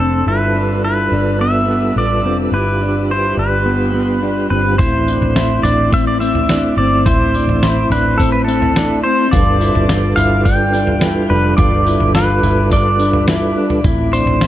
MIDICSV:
0, 0, Header, 1, 6, 480
1, 0, Start_track
1, 0, Key_signature, 0, "minor"
1, 0, Tempo, 566038
1, 226, Time_signature, 4, 2, 24, 8
1, 12271, End_track
2, 0, Start_track
2, 0, Title_t, "Pedal steel guitar"
2, 0, Program_c, 0, 26
2, 0, Note_on_c, 0, 69, 66
2, 238, Note_on_c, 0, 71, 78
2, 239, Note_off_c, 0, 69, 0
2, 706, Note_off_c, 0, 71, 0
2, 716, Note_on_c, 0, 71, 77
2, 1194, Note_off_c, 0, 71, 0
2, 1197, Note_on_c, 0, 76, 82
2, 1676, Note_off_c, 0, 76, 0
2, 1679, Note_on_c, 0, 74, 82
2, 2008, Note_off_c, 0, 74, 0
2, 2152, Note_on_c, 0, 71, 76
2, 2636, Note_off_c, 0, 71, 0
2, 2639, Note_on_c, 0, 72, 76
2, 2856, Note_off_c, 0, 72, 0
2, 2876, Note_on_c, 0, 71, 73
2, 3797, Note_off_c, 0, 71, 0
2, 3819, Note_on_c, 0, 71, 64
2, 4053, Note_off_c, 0, 71, 0
2, 4056, Note_on_c, 0, 72, 88
2, 4778, Note_on_c, 0, 74, 89
2, 4803, Note_off_c, 0, 72, 0
2, 5029, Note_off_c, 0, 74, 0
2, 5034, Note_on_c, 0, 76, 90
2, 5147, Note_off_c, 0, 76, 0
2, 5150, Note_on_c, 0, 74, 81
2, 5257, Note_off_c, 0, 74, 0
2, 5260, Note_on_c, 0, 76, 95
2, 5743, Note_off_c, 0, 76, 0
2, 5747, Note_on_c, 0, 74, 84
2, 5985, Note_on_c, 0, 72, 86
2, 5993, Note_off_c, 0, 74, 0
2, 6711, Note_off_c, 0, 72, 0
2, 6715, Note_on_c, 0, 71, 92
2, 6933, Note_on_c, 0, 69, 80
2, 6957, Note_off_c, 0, 71, 0
2, 7054, Note_off_c, 0, 69, 0
2, 7058, Note_on_c, 0, 71, 83
2, 7158, Note_off_c, 0, 71, 0
2, 7161, Note_on_c, 0, 69, 92
2, 7619, Note_off_c, 0, 69, 0
2, 7662, Note_on_c, 0, 72, 89
2, 7898, Note_on_c, 0, 74, 94
2, 7911, Note_off_c, 0, 72, 0
2, 8611, Note_off_c, 0, 74, 0
2, 8615, Note_on_c, 0, 77, 109
2, 8860, Note_off_c, 0, 77, 0
2, 8863, Note_on_c, 0, 79, 99
2, 9581, Note_on_c, 0, 71, 86
2, 9606, Note_off_c, 0, 79, 0
2, 9806, Note_off_c, 0, 71, 0
2, 9810, Note_on_c, 0, 74, 97
2, 10297, Note_off_c, 0, 74, 0
2, 10301, Note_on_c, 0, 71, 82
2, 10789, Note_off_c, 0, 71, 0
2, 10792, Note_on_c, 0, 74, 79
2, 11235, Note_off_c, 0, 74, 0
2, 11982, Note_on_c, 0, 72, 99
2, 12271, Note_off_c, 0, 72, 0
2, 12271, End_track
3, 0, Start_track
3, 0, Title_t, "Clean electric guitar"
3, 0, Program_c, 1, 27
3, 0, Note_on_c, 1, 60, 63
3, 231, Note_off_c, 1, 60, 0
3, 233, Note_on_c, 1, 64, 76
3, 469, Note_off_c, 1, 64, 0
3, 472, Note_on_c, 1, 62, 66
3, 709, Note_off_c, 1, 62, 0
3, 717, Note_on_c, 1, 64, 67
3, 951, Note_off_c, 1, 64, 0
3, 957, Note_on_c, 1, 62, 70
3, 1188, Note_off_c, 1, 62, 0
3, 1191, Note_on_c, 1, 59, 67
3, 1417, Note_off_c, 1, 59, 0
3, 1427, Note_on_c, 1, 59, 67
3, 1665, Note_off_c, 1, 59, 0
3, 1669, Note_on_c, 1, 62, 70
3, 1907, Note_off_c, 1, 62, 0
3, 1911, Note_on_c, 1, 60, 67
3, 2147, Note_on_c, 1, 64, 76
3, 2148, Note_off_c, 1, 60, 0
3, 2386, Note_off_c, 1, 64, 0
3, 2389, Note_on_c, 1, 62, 64
3, 2627, Note_off_c, 1, 62, 0
3, 2628, Note_on_c, 1, 64, 62
3, 2862, Note_on_c, 1, 62, 65
3, 2867, Note_off_c, 1, 64, 0
3, 3095, Note_off_c, 1, 62, 0
3, 3099, Note_on_c, 1, 59, 70
3, 3331, Note_off_c, 1, 59, 0
3, 3341, Note_on_c, 1, 59, 66
3, 3582, Note_off_c, 1, 59, 0
3, 3585, Note_on_c, 1, 62, 67
3, 3816, Note_off_c, 1, 62, 0
3, 3819, Note_on_c, 1, 60, 65
3, 4062, Note_off_c, 1, 60, 0
3, 4070, Note_on_c, 1, 64, 83
3, 4306, Note_on_c, 1, 62, 66
3, 4308, Note_off_c, 1, 64, 0
3, 4545, Note_off_c, 1, 62, 0
3, 4546, Note_on_c, 1, 64, 78
3, 4784, Note_on_c, 1, 62, 76
3, 4786, Note_off_c, 1, 64, 0
3, 5025, Note_off_c, 1, 62, 0
3, 5029, Note_on_c, 1, 60, 80
3, 5258, Note_off_c, 1, 60, 0
3, 5268, Note_on_c, 1, 60, 77
3, 5507, Note_off_c, 1, 60, 0
3, 5510, Note_on_c, 1, 62, 75
3, 5748, Note_off_c, 1, 62, 0
3, 5752, Note_on_c, 1, 60, 72
3, 5989, Note_off_c, 1, 60, 0
3, 5994, Note_on_c, 1, 64, 86
3, 6230, Note_off_c, 1, 64, 0
3, 6233, Note_on_c, 1, 62, 69
3, 6469, Note_off_c, 1, 62, 0
3, 6472, Note_on_c, 1, 64, 79
3, 6709, Note_off_c, 1, 64, 0
3, 6712, Note_on_c, 1, 62, 77
3, 6943, Note_off_c, 1, 62, 0
3, 6947, Note_on_c, 1, 60, 80
3, 7179, Note_off_c, 1, 60, 0
3, 7189, Note_on_c, 1, 60, 76
3, 7427, Note_off_c, 1, 60, 0
3, 7432, Note_on_c, 1, 62, 87
3, 7668, Note_off_c, 1, 62, 0
3, 7672, Note_on_c, 1, 60, 76
3, 7904, Note_on_c, 1, 65, 85
3, 7908, Note_off_c, 1, 60, 0
3, 8145, Note_off_c, 1, 65, 0
3, 8151, Note_on_c, 1, 64, 72
3, 8379, Note_off_c, 1, 64, 0
3, 8382, Note_on_c, 1, 65, 78
3, 8622, Note_off_c, 1, 65, 0
3, 8625, Note_on_c, 1, 64, 75
3, 8865, Note_off_c, 1, 64, 0
3, 8865, Note_on_c, 1, 62, 88
3, 9099, Note_off_c, 1, 62, 0
3, 9109, Note_on_c, 1, 62, 74
3, 9347, Note_off_c, 1, 62, 0
3, 9349, Note_on_c, 1, 64, 80
3, 9587, Note_off_c, 1, 64, 0
3, 9589, Note_on_c, 1, 62, 76
3, 9827, Note_off_c, 1, 62, 0
3, 9833, Note_on_c, 1, 65, 83
3, 10067, Note_off_c, 1, 65, 0
3, 10071, Note_on_c, 1, 64, 70
3, 10305, Note_off_c, 1, 64, 0
3, 10309, Note_on_c, 1, 65, 73
3, 10541, Note_off_c, 1, 65, 0
3, 10544, Note_on_c, 1, 64, 77
3, 10785, Note_off_c, 1, 64, 0
3, 10789, Note_on_c, 1, 62, 79
3, 11010, Note_off_c, 1, 62, 0
3, 11020, Note_on_c, 1, 62, 72
3, 11263, Note_off_c, 1, 62, 0
3, 11268, Note_on_c, 1, 64, 75
3, 11507, Note_off_c, 1, 64, 0
3, 11511, Note_on_c, 1, 62, 75
3, 11745, Note_on_c, 1, 64, 92
3, 11748, Note_off_c, 1, 62, 0
3, 11985, Note_off_c, 1, 64, 0
3, 11985, Note_on_c, 1, 62, 67
3, 12225, Note_off_c, 1, 62, 0
3, 12231, Note_on_c, 1, 64, 72
3, 12271, Note_off_c, 1, 64, 0
3, 12271, End_track
4, 0, Start_track
4, 0, Title_t, "Tonewheel organ"
4, 0, Program_c, 2, 16
4, 0, Note_on_c, 2, 57, 57
4, 0, Note_on_c, 2, 60, 50
4, 0, Note_on_c, 2, 62, 62
4, 185, Note_off_c, 2, 57, 0
4, 185, Note_off_c, 2, 60, 0
4, 227, Note_on_c, 2, 65, 54
4, 230, Note_on_c, 2, 69, 54
4, 235, Note_on_c, 2, 71, 67
4, 237, Note_on_c, 2, 55, 58
4, 2128, Note_off_c, 2, 69, 0
4, 2151, Note_on_c, 2, 67, 56
4, 4032, Note_off_c, 2, 62, 0
4, 4032, Note_off_c, 2, 65, 0
4, 4036, Note_off_c, 2, 71, 0
4, 4037, Note_off_c, 2, 55, 0
4, 4049, Note_off_c, 2, 67, 0
4, 4063, Note_on_c, 2, 57, 64
4, 4063, Note_on_c, 2, 64, 72
4, 4069, Note_on_c, 2, 60, 59
4, 7870, Note_off_c, 2, 57, 0
4, 7870, Note_off_c, 2, 64, 0
4, 7873, Note_off_c, 2, 60, 0
4, 7899, Note_on_c, 2, 62, 61
4, 7900, Note_on_c, 2, 65, 64
4, 7900, Note_on_c, 2, 69, 60
4, 7901, Note_on_c, 2, 71, 75
4, 7904, Note_on_c, 2, 55, 70
4, 11708, Note_off_c, 2, 62, 0
4, 11709, Note_off_c, 2, 65, 0
4, 11709, Note_off_c, 2, 69, 0
4, 11710, Note_off_c, 2, 71, 0
4, 11711, Note_off_c, 2, 55, 0
4, 11752, Note_on_c, 2, 64, 74
4, 11754, Note_on_c, 2, 57, 67
4, 11754, Note_on_c, 2, 60, 61
4, 12271, Note_off_c, 2, 57, 0
4, 12271, Note_off_c, 2, 60, 0
4, 12271, Note_off_c, 2, 64, 0
4, 12271, End_track
5, 0, Start_track
5, 0, Title_t, "Fingered electric bass"
5, 0, Program_c, 3, 33
5, 0, Note_on_c, 3, 29, 74
5, 211, Note_off_c, 3, 29, 0
5, 224, Note_on_c, 3, 31, 90
5, 911, Note_off_c, 3, 31, 0
5, 947, Note_on_c, 3, 31, 80
5, 1632, Note_off_c, 3, 31, 0
5, 1663, Note_on_c, 3, 33, 83
5, 1904, Note_off_c, 3, 33, 0
5, 1904, Note_on_c, 3, 29, 76
5, 2129, Note_off_c, 3, 29, 0
5, 2134, Note_on_c, 3, 31, 81
5, 2826, Note_off_c, 3, 31, 0
5, 2861, Note_on_c, 3, 31, 85
5, 3789, Note_off_c, 3, 31, 0
5, 3821, Note_on_c, 3, 31, 76
5, 4051, Note_off_c, 3, 31, 0
5, 4065, Note_on_c, 3, 33, 99
5, 4407, Note_off_c, 3, 33, 0
5, 4419, Note_on_c, 3, 33, 90
5, 4764, Note_off_c, 3, 33, 0
5, 4775, Note_on_c, 3, 33, 94
5, 5706, Note_off_c, 3, 33, 0
5, 5739, Note_on_c, 3, 31, 92
5, 5988, Note_off_c, 3, 31, 0
5, 5988, Note_on_c, 3, 33, 105
5, 6328, Note_off_c, 3, 33, 0
5, 6340, Note_on_c, 3, 33, 97
5, 6684, Note_off_c, 3, 33, 0
5, 6700, Note_on_c, 3, 33, 95
5, 7629, Note_off_c, 3, 33, 0
5, 7906, Note_on_c, 3, 31, 104
5, 8248, Note_off_c, 3, 31, 0
5, 8268, Note_on_c, 3, 31, 96
5, 8609, Note_off_c, 3, 31, 0
5, 8628, Note_on_c, 3, 31, 85
5, 9553, Note_off_c, 3, 31, 0
5, 9586, Note_on_c, 3, 29, 94
5, 9814, Note_off_c, 3, 29, 0
5, 9823, Note_on_c, 3, 31, 104
5, 10166, Note_off_c, 3, 31, 0
5, 10189, Note_on_c, 3, 31, 96
5, 10529, Note_off_c, 3, 31, 0
5, 10545, Note_on_c, 3, 31, 100
5, 11471, Note_off_c, 3, 31, 0
5, 11741, Note_on_c, 3, 33, 101
5, 12085, Note_off_c, 3, 33, 0
5, 12091, Note_on_c, 3, 33, 93
5, 12271, Note_off_c, 3, 33, 0
5, 12271, End_track
6, 0, Start_track
6, 0, Title_t, "Drums"
6, 4063, Note_on_c, 9, 43, 114
6, 4063, Note_on_c, 9, 54, 68
6, 4064, Note_on_c, 9, 36, 109
6, 4148, Note_off_c, 9, 43, 0
6, 4148, Note_off_c, 9, 54, 0
6, 4149, Note_off_c, 9, 36, 0
6, 4306, Note_on_c, 9, 54, 62
6, 4391, Note_off_c, 9, 54, 0
6, 4428, Note_on_c, 9, 43, 64
6, 4513, Note_off_c, 9, 43, 0
6, 4545, Note_on_c, 9, 54, 86
6, 4546, Note_on_c, 9, 38, 103
6, 4630, Note_off_c, 9, 38, 0
6, 4630, Note_off_c, 9, 54, 0
6, 4789, Note_on_c, 9, 43, 61
6, 4789, Note_on_c, 9, 54, 57
6, 4873, Note_off_c, 9, 43, 0
6, 4873, Note_off_c, 9, 54, 0
6, 5025, Note_on_c, 9, 36, 83
6, 5027, Note_on_c, 9, 54, 68
6, 5110, Note_off_c, 9, 36, 0
6, 5112, Note_off_c, 9, 54, 0
6, 5268, Note_on_c, 9, 54, 58
6, 5353, Note_off_c, 9, 54, 0
6, 5386, Note_on_c, 9, 43, 67
6, 5471, Note_off_c, 9, 43, 0
6, 5505, Note_on_c, 9, 54, 88
6, 5506, Note_on_c, 9, 38, 107
6, 5589, Note_off_c, 9, 54, 0
6, 5591, Note_off_c, 9, 38, 0
6, 5988, Note_on_c, 9, 36, 114
6, 5992, Note_on_c, 9, 43, 112
6, 5992, Note_on_c, 9, 54, 68
6, 6073, Note_off_c, 9, 36, 0
6, 6077, Note_off_c, 9, 43, 0
6, 6077, Note_off_c, 9, 54, 0
6, 6229, Note_on_c, 9, 54, 62
6, 6314, Note_off_c, 9, 54, 0
6, 6351, Note_on_c, 9, 43, 68
6, 6436, Note_off_c, 9, 43, 0
6, 6468, Note_on_c, 9, 54, 77
6, 6469, Note_on_c, 9, 38, 101
6, 6553, Note_off_c, 9, 54, 0
6, 6554, Note_off_c, 9, 38, 0
6, 6714, Note_on_c, 9, 43, 57
6, 6714, Note_on_c, 9, 54, 58
6, 6798, Note_off_c, 9, 43, 0
6, 6798, Note_off_c, 9, 54, 0
6, 6950, Note_on_c, 9, 36, 86
6, 6952, Note_on_c, 9, 54, 68
6, 7034, Note_off_c, 9, 36, 0
6, 7037, Note_off_c, 9, 54, 0
6, 7192, Note_on_c, 9, 54, 59
6, 7277, Note_off_c, 9, 54, 0
6, 7310, Note_on_c, 9, 43, 66
6, 7395, Note_off_c, 9, 43, 0
6, 7429, Note_on_c, 9, 54, 87
6, 7430, Note_on_c, 9, 38, 102
6, 7514, Note_off_c, 9, 54, 0
6, 7515, Note_off_c, 9, 38, 0
6, 7911, Note_on_c, 9, 36, 109
6, 7911, Note_on_c, 9, 43, 119
6, 7911, Note_on_c, 9, 54, 67
6, 7995, Note_off_c, 9, 36, 0
6, 7996, Note_off_c, 9, 43, 0
6, 7996, Note_off_c, 9, 54, 0
6, 8148, Note_on_c, 9, 54, 64
6, 8233, Note_off_c, 9, 54, 0
6, 8271, Note_on_c, 9, 43, 71
6, 8356, Note_off_c, 9, 43, 0
6, 8388, Note_on_c, 9, 54, 83
6, 8389, Note_on_c, 9, 38, 104
6, 8473, Note_off_c, 9, 38, 0
6, 8473, Note_off_c, 9, 54, 0
6, 8627, Note_on_c, 9, 43, 58
6, 8627, Note_on_c, 9, 54, 62
6, 8712, Note_off_c, 9, 43, 0
6, 8712, Note_off_c, 9, 54, 0
6, 8867, Note_on_c, 9, 36, 82
6, 8869, Note_on_c, 9, 54, 69
6, 8952, Note_off_c, 9, 36, 0
6, 8953, Note_off_c, 9, 54, 0
6, 9102, Note_on_c, 9, 54, 58
6, 9187, Note_off_c, 9, 54, 0
6, 9220, Note_on_c, 9, 43, 60
6, 9304, Note_off_c, 9, 43, 0
6, 9337, Note_on_c, 9, 54, 86
6, 9338, Note_on_c, 9, 38, 100
6, 9422, Note_off_c, 9, 54, 0
6, 9423, Note_off_c, 9, 38, 0
6, 9818, Note_on_c, 9, 43, 114
6, 9818, Note_on_c, 9, 54, 65
6, 9824, Note_on_c, 9, 36, 106
6, 9903, Note_off_c, 9, 43, 0
6, 9903, Note_off_c, 9, 54, 0
6, 9909, Note_off_c, 9, 36, 0
6, 10062, Note_on_c, 9, 54, 61
6, 10147, Note_off_c, 9, 54, 0
6, 10179, Note_on_c, 9, 43, 66
6, 10264, Note_off_c, 9, 43, 0
6, 10300, Note_on_c, 9, 54, 84
6, 10301, Note_on_c, 9, 38, 107
6, 10385, Note_off_c, 9, 38, 0
6, 10385, Note_off_c, 9, 54, 0
6, 10544, Note_on_c, 9, 43, 63
6, 10544, Note_on_c, 9, 54, 64
6, 10629, Note_off_c, 9, 43, 0
6, 10629, Note_off_c, 9, 54, 0
6, 10781, Note_on_c, 9, 54, 68
6, 10782, Note_on_c, 9, 36, 86
6, 10866, Note_off_c, 9, 54, 0
6, 10867, Note_off_c, 9, 36, 0
6, 11018, Note_on_c, 9, 54, 59
6, 11103, Note_off_c, 9, 54, 0
6, 11138, Note_on_c, 9, 43, 65
6, 11223, Note_off_c, 9, 43, 0
6, 11258, Note_on_c, 9, 54, 86
6, 11259, Note_on_c, 9, 38, 107
6, 11342, Note_off_c, 9, 54, 0
6, 11344, Note_off_c, 9, 38, 0
6, 11619, Note_on_c, 9, 43, 60
6, 11703, Note_off_c, 9, 43, 0
6, 11740, Note_on_c, 9, 43, 113
6, 11740, Note_on_c, 9, 54, 69
6, 11742, Note_on_c, 9, 36, 110
6, 11824, Note_off_c, 9, 43, 0
6, 11824, Note_off_c, 9, 54, 0
6, 11826, Note_off_c, 9, 36, 0
6, 11983, Note_on_c, 9, 54, 67
6, 12068, Note_off_c, 9, 54, 0
6, 12102, Note_on_c, 9, 43, 71
6, 12187, Note_off_c, 9, 43, 0
6, 12222, Note_on_c, 9, 38, 109
6, 12222, Note_on_c, 9, 54, 86
6, 12271, Note_off_c, 9, 38, 0
6, 12271, Note_off_c, 9, 54, 0
6, 12271, End_track
0, 0, End_of_file